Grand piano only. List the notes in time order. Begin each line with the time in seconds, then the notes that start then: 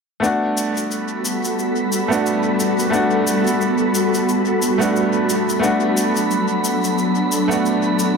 0.20 A3 B3 D4
0.26 F#4
2.08 A3 B3 D4
2.14 F#4
2.90 A3 B3 D4
2.96 F#4
4.78 A3 B3 D4
4.83 F#4
5.59 A3 B3 D4
5.65 F#4
7.48 A3 B3 D4
7.53 F#4